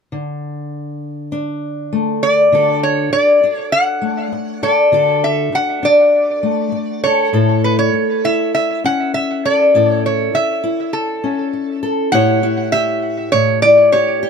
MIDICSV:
0, 0, Header, 1, 4, 480
1, 0, Start_track
1, 0, Tempo, 600601
1, 101, Time_signature, 4, 2, 24, 8
1, 11426, End_track
2, 0, Start_track
2, 0, Title_t, "Resonator guitar played with a steel bar"
2, 0, Program_c, 0, 25
2, 1781, Note_on_c, 0, 74, 70
2, 2230, Note_off_c, 0, 74, 0
2, 2265, Note_on_c, 0, 73, 66
2, 2495, Note_off_c, 0, 73, 0
2, 2499, Note_on_c, 0, 74, 76
2, 2818, Note_off_c, 0, 74, 0
2, 2818, Note_on_c, 0, 73, 76
2, 2949, Note_off_c, 0, 73, 0
2, 2975, Note_on_c, 0, 78, 79
2, 3702, Note_on_c, 0, 74, 65
2, 3721, Note_off_c, 0, 78, 0
2, 4185, Note_off_c, 0, 74, 0
2, 4188, Note_on_c, 0, 76, 71
2, 4433, Note_off_c, 0, 76, 0
2, 4436, Note_on_c, 0, 78, 82
2, 4675, Note_on_c, 0, 74, 79
2, 4676, Note_off_c, 0, 78, 0
2, 5620, Note_off_c, 0, 74, 0
2, 5623, Note_on_c, 0, 73, 77
2, 6105, Note_off_c, 0, 73, 0
2, 6108, Note_on_c, 0, 71, 66
2, 6217, Note_off_c, 0, 71, 0
2, 6223, Note_on_c, 0, 73, 70
2, 6592, Note_on_c, 0, 76, 75
2, 6593, Note_off_c, 0, 73, 0
2, 6820, Note_off_c, 0, 76, 0
2, 6830, Note_on_c, 0, 76, 66
2, 7073, Note_off_c, 0, 76, 0
2, 7077, Note_on_c, 0, 78, 81
2, 7303, Note_off_c, 0, 78, 0
2, 7306, Note_on_c, 0, 76, 64
2, 7551, Note_off_c, 0, 76, 0
2, 7557, Note_on_c, 0, 74, 77
2, 7908, Note_off_c, 0, 74, 0
2, 7908, Note_on_c, 0, 73, 77
2, 8036, Note_off_c, 0, 73, 0
2, 8039, Note_on_c, 0, 73, 57
2, 8270, Note_on_c, 0, 76, 72
2, 8277, Note_off_c, 0, 73, 0
2, 8713, Note_off_c, 0, 76, 0
2, 8736, Note_on_c, 0, 69, 54
2, 9425, Note_off_c, 0, 69, 0
2, 9686, Note_on_c, 0, 78, 92
2, 10164, Note_off_c, 0, 78, 0
2, 10167, Note_on_c, 0, 76, 80
2, 10620, Note_off_c, 0, 76, 0
2, 10645, Note_on_c, 0, 73, 82
2, 10883, Note_off_c, 0, 73, 0
2, 10886, Note_on_c, 0, 74, 92
2, 11125, Note_off_c, 0, 74, 0
2, 11128, Note_on_c, 0, 73, 80
2, 11426, Note_off_c, 0, 73, 0
2, 11426, End_track
3, 0, Start_track
3, 0, Title_t, "Steel-string acoustic guitar"
3, 0, Program_c, 1, 25
3, 96, Note_on_c, 1, 50, 49
3, 1055, Note_on_c, 1, 62, 46
3, 1539, Note_on_c, 1, 57, 52
3, 1991, Note_off_c, 1, 62, 0
3, 1993, Note_off_c, 1, 57, 0
3, 2007, Note_off_c, 1, 50, 0
3, 2016, Note_on_c, 1, 50, 61
3, 2024, Note_on_c, 1, 62, 47
3, 2029, Note_on_c, 1, 66, 50
3, 2036, Note_on_c, 1, 69, 54
3, 2501, Note_off_c, 1, 50, 0
3, 2742, Note_off_c, 1, 62, 0
3, 2746, Note_on_c, 1, 62, 49
3, 3209, Note_on_c, 1, 57, 52
3, 3695, Note_off_c, 1, 69, 0
3, 3699, Note_on_c, 1, 69, 60
3, 3916, Note_off_c, 1, 62, 0
3, 3918, Note_off_c, 1, 66, 0
3, 3931, Note_on_c, 1, 50, 59
3, 3938, Note_on_c, 1, 62, 54
3, 3941, Note_on_c, 1, 66, 49
3, 3945, Note_off_c, 1, 69, 0
3, 3948, Note_on_c, 1, 69, 61
3, 4408, Note_off_c, 1, 50, 0
3, 4648, Note_off_c, 1, 62, 0
3, 4657, Note_on_c, 1, 62, 48
3, 5134, Note_off_c, 1, 57, 0
3, 5137, Note_on_c, 1, 57, 50
3, 5621, Note_off_c, 1, 69, 0
3, 5624, Note_on_c, 1, 69, 61
3, 5831, Note_off_c, 1, 62, 0
3, 5833, Note_off_c, 1, 66, 0
3, 5856, Note_on_c, 1, 45, 65
3, 5862, Note_on_c, 1, 64, 47
3, 5866, Note_off_c, 1, 69, 0
3, 5866, Note_on_c, 1, 69, 62
3, 6340, Note_off_c, 1, 45, 0
3, 6586, Note_off_c, 1, 64, 0
3, 6589, Note_on_c, 1, 64, 52
3, 7063, Note_off_c, 1, 57, 0
3, 7067, Note_on_c, 1, 61, 52
3, 7552, Note_off_c, 1, 69, 0
3, 7555, Note_on_c, 1, 69, 58
3, 7786, Note_on_c, 1, 45, 61
3, 7788, Note_off_c, 1, 64, 0
3, 7792, Note_on_c, 1, 64, 54
3, 7797, Note_off_c, 1, 69, 0
3, 7801, Note_on_c, 1, 69, 58
3, 8250, Note_off_c, 1, 45, 0
3, 8490, Note_off_c, 1, 64, 0
3, 8500, Note_on_c, 1, 64, 50
3, 8977, Note_off_c, 1, 61, 0
3, 8980, Note_on_c, 1, 61, 49
3, 9443, Note_off_c, 1, 69, 0
3, 9452, Note_on_c, 1, 69, 61
3, 9667, Note_off_c, 1, 69, 0
3, 9670, Note_off_c, 1, 61, 0
3, 9670, Note_off_c, 1, 64, 0
3, 9690, Note_on_c, 1, 45, 73
3, 9695, Note_on_c, 1, 64, 60
3, 9702, Note_on_c, 1, 67, 65
3, 9708, Note_on_c, 1, 73, 68
3, 9931, Note_off_c, 1, 64, 0
3, 9934, Note_on_c, 1, 64, 59
3, 10175, Note_off_c, 1, 67, 0
3, 10178, Note_on_c, 1, 67, 55
3, 10646, Note_off_c, 1, 45, 0
3, 10649, Note_on_c, 1, 45, 61
3, 10891, Note_off_c, 1, 64, 0
3, 10901, Note_on_c, 1, 64, 49
3, 11126, Note_off_c, 1, 67, 0
3, 11135, Note_on_c, 1, 67, 54
3, 11159, Note_off_c, 1, 73, 0
3, 11361, Note_off_c, 1, 67, 0
3, 11370, Note_on_c, 1, 67, 63
3, 11426, Note_off_c, 1, 45, 0
3, 11426, Note_off_c, 1, 64, 0
3, 11426, Note_off_c, 1, 67, 0
3, 11426, End_track
4, 0, Start_track
4, 0, Title_t, "Muted steel-string acoustic guitar strokes"
4, 2502, Note_on_c, 9, 29, 53
4, 2582, Note_off_c, 9, 29, 0
4, 3454, Note_on_c, 9, 29, 55
4, 3534, Note_off_c, 9, 29, 0
4, 4414, Note_on_c, 9, 29, 52
4, 4494, Note_off_c, 9, 29, 0
4, 5371, Note_on_c, 9, 29, 58
4, 5451, Note_off_c, 9, 29, 0
4, 6343, Note_on_c, 9, 29, 56
4, 6423, Note_off_c, 9, 29, 0
4, 7301, Note_on_c, 9, 29, 54
4, 7381, Note_off_c, 9, 29, 0
4, 8260, Note_on_c, 9, 29, 50
4, 8339, Note_off_c, 9, 29, 0
4, 9217, Note_on_c, 9, 29, 53
4, 9297, Note_off_c, 9, 29, 0
4, 11426, End_track
0, 0, End_of_file